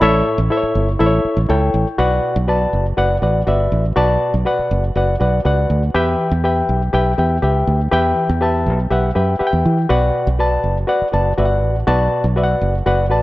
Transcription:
Already playing: D5 B5
0.01 A1 A2 E4 A4 C#5 E5
0.38 A1
0.50 E4 A4 C5 E5
0.57 C#5
0.63 muted fingered electric bass stroke
0.75 G1
0.99 A1 E4 A4 C5 E5
1.06 C#5
1.25 muted fingered electric bass stroke
1.37 A1
1.49 C#2 E4 A4 C#5 G5
1.74 A1
1.98 B1 B2 F#4 B4 D5 F#5
2.36 B1
2.48 F#4 B4 D5 A5
2.73 F#1
2.97 F#1 F#4 B4 D5 F#5
3.22 A1 F#4 B4 D5 F#5
3.47 G1 F#4 B4 D5 E5
3.72 A1
3.96 B1 B2 F#4 B4 D5 A5
4.34 B1
4.45 F#4 B4 D5 F#5
4.59 muted fingered electric bass stroke
4.71 F#1
4.96 F#1 F#4 B4 D5 F#5
5.20 B1 F#4 B4 D5 F#5
5.45 C#2 F#4 B4 D5 F#5
5.70 D2
5.94 E2 E3 G4 B4 E5 G5
6.32 E2
6.44 G4 B4 E5 G5
6.69 B1
6.93 B1 G4 B4 E5 G5
7.18 E2 G4 B4 E5 G5
7.42 C#2 G4 B4 E5 G5
7.67 D2
7.92 E2 E3 G4 B4 E5 G5
8.29 E2
8.41 G4 B4 E5 A5
8.66 B1
8.90 B1 G4 B4 E5 F#5
9.15 F#2 G4 B4 E5 G5
9.39 G4 B4 E5 F#5, muted fingered electric bass stroke
9.47 G5
9.53 E2
9.66 E3
9.89 B1 B2 F#4 B4 D5 F#5
10.27 B1
10.39 F#4 B4 D5 A5
10.64 F#1
10.87 F#4 B4 D5 F#5
11.02 muted fingered electric bass stroke
11.12 F#1 F#4 B4 D5 A5
11.38 G1 F#4 B4 D5 E5
11.45 F#5
11.63 A1
11.87 B1 B2 F#4 B4 D5 A5
12.24 B1
12.36 F#4 B4 D5 E5
12.43 F#5
12.61 F#1
12.86 F#1 F#4 B4 D5 F#5
13.10 A1 F#4 B4 D5 A5

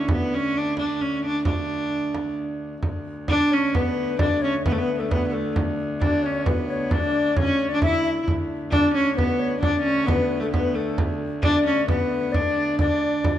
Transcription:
Already playing: D2 C#4
0.08 B3, frame drum
0.34 C#4
0.57 D4
0.77 D4, frame drum
1.00 C#4, frame drum
1.23 D4, frame drum
1.45 D4, frame drum
2.15 frame drum
2.83 D2, frame drum
3.28 D4 D5, frame drum
3.51 C#4 C#5, frame drum
3.74 B3 B4, frame drum
3.97 frame drum
4.19 D4 D5, frame drum
4.41 C#4 C#5
4.66 B3 B4, frame drum
4.72 A3
4.78 B3
4.88 frame drum
4.95 B3
4.99 A3 A4
5.11 B3 B4, frame drum
5.27 B3
5.32 A3 A4, frame drum
5.56 frame drum
5.99 D4 D5, frame drum
6.22 C#4 C#5, frame drum
6.46 B3 B4, frame drum
6.68 C#5, frame drum
6.91 D4 D5, frame drum
7.36 C#4 C#5, frame drum
7.59 frame drum
7.69 D5
7.74 D4
7.82 E4 E5, frame drum
8.04 E5, frame drum
8.26 D2, frame drum
8.71 D4 D5, frame drum
8.94 C#4 C#5, frame drum
9.17 B3 B4, frame drum
9.39 C#5, frame drum
9.61 D4 D5, frame drum
9.82 C#4
10.06 B3 B4, frame drum
10.32 frame drum
10.40 A3 A4
10.51 B3 B4, frame drum
10.75 A3 A4, frame drum
10.98 frame drum
11.43 D4 D5, frame drum
11.66 C#4, frame drum
11.88 B3 B4, frame drum
12.12 frame drum
12.32 D4 D5, frame drum
12.57 frame drum
12.79 D4 D5, frame drum
13.24 frame drum

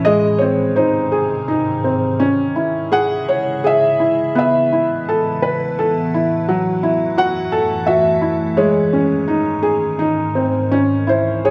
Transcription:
0.05 G#2 C3 D#3 G#3 D#5
0.38 C4 C#5
0.76 D#4 C5
1.12 G#4
1.48 D#4
1.84 C4
2.20 C#3 G#3 C#4 E4
2.56 E4
2.92 G#4 F#5
3.29 C#5
3.64 G#4 E5
4.00 E4
4.35 A2 E3 B3 E5
4.73 E4
5.09 A4
5.42 B4
5.79 A4
6.14 E4
6.48 F#2 E3 F#3 A3
6.83 E4
7.18 F#4 F#5
7.52 A4
7.87 F#4 E5
8.21 E4
8.57 G#2 D#3 G#3 C#4 C#5
8.93 C#4
9.28 D#4
9.63 G#4
9.99 D#4
10.35 C4
10.72 C#2 G#2 E3 C#4
11.07 E4 C5
11.45 G#4 C#5

